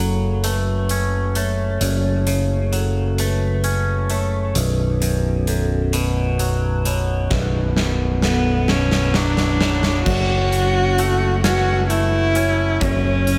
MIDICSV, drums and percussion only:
0, 0, Header, 1, 2, 480
1, 0, Start_track
1, 0, Tempo, 917431
1, 948, Time_signature, 6, 3, 24, 8
1, 7003, End_track
2, 0, Start_track
2, 0, Title_t, "Drums"
2, 229, Note_on_c, 9, 42, 64
2, 281, Note_off_c, 9, 42, 0
2, 467, Note_on_c, 9, 42, 51
2, 520, Note_off_c, 9, 42, 0
2, 708, Note_on_c, 9, 42, 49
2, 760, Note_off_c, 9, 42, 0
2, 946, Note_on_c, 9, 42, 73
2, 999, Note_off_c, 9, 42, 0
2, 1186, Note_on_c, 9, 42, 49
2, 1238, Note_off_c, 9, 42, 0
2, 1426, Note_on_c, 9, 42, 46
2, 1478, Note_off_c, 9, 42, 0
2, 1666, Note_on_c, 9, 42, 58
2, 1718, Note_off_c, 9, 42, 0
2, 1903, Note_on_c, 9, 42, 46
2, 1955, Note_off_c, 9, 42, 0
2, 2143, Note_on_c, 9, 42, 47
2, 2195, Note_off_c, 9, 42, 0
2, 2382, Note_on_c, 9, 42, 68
2, 2434, Note_off_c, 9, 42, 0
2, 2625, Note_on_c, 9, 42, 48
2, 2677, Note_off_c, 9, 42, 0
2, 2864, Note_on_c, 9, 42, 44
2, 2916, Note_off_c, 9, 42, 0
2, 3103, Note_on_c, 9, 42, 60
2, 3155, Note_off_c, 9, 42, 0
2, 3345, Note_on_c, 9, 42, 47
2, 3397, Note_off_c, 9, 42, 0
2, 3586, Note_on_c, 9, 42, 52
2, 3638, Note_off_c, 9, 42, 0
2, 3822, Note_on_c, 9, 38, 49
2, 3824, Note_on_c, 9, 36, 86
2, 3874, Note_off_c, 9, 38, 0
2, 3877, Note_off_c, 9, 36, 0
2, 4063, Note_on_c, 9, 38, 47
2, 4115, Note_off_c, 9, 38, 0
2, 4303, Note_on_c, 9, 38, 53
2, 4355, Note_off_c, 9, 38, 0
2, 4542, Note_on_c, 9, 38, 55
2, 4595, Note_off_c, 9, 38, 0
2, 4664, Note_on_c, 9, 38, 55
2, 4717, Note_off_c, 9, 38, 0
2, 4782, Note_on_c, 9, 38, 71
2, 4835, Note_off_c, 9, 38, 0
2, 4904, Note_on_c, 9, 38, 60
2, 4956, Note_off_c, 9, 38, 0
2, 5026, Note_on_c, 9, 38, 73
2, 5078, Note_off_c, 9, 38, 0
2, 5143, Note_on_c, 9, 38, 61
2, 5196, Note_off_c, 9, 38, 0
2, 5263, Note_on_c, 9, 49, 80
2, 5264, Note_on_c, 9, 36, 91
2, 5316, Note_off_c, 9, 49, 0
2, 5317, Note_off_c, 9, 36, 0
2, 5506, Note_on_c, 9, 42, 44
2, 5559, Note_off_c, 9, 42, 0
2, 5746, Note_on_c, 9, 42, 47
2, 5799, Note_off_c, 9, 42, 0
2, 5986, Note_on_c, 9, 38, 82
2, 5986, Note_on_c, 9, 42, 63
2, 6038, Note_off_c, 9, 38, 0
2, 6038, Note_off_c, 9, 42, 0
2, 6225, Note_on_c, 9, 42, 51
2, 6278, Note_off_c, 9, 42, 0
2, 6462, Note_on_c, 9, 42, 44
2, 6514, Note_off_c, 9, 42, 0
2, 6703, Note_on_c, 9, 42, 70
2, 6704, Note_on_c, 9, 36, 94
2, 6755, Note_off_c, 9, 42, 0
2, 6756, Note_off_c, 9, 36, 0
2, 6943, Note_on_c, 9, 42, 50
2, 6996, Note_off_c, 9, 42, 0
2, 7003, End_track
0, 0, End_of_file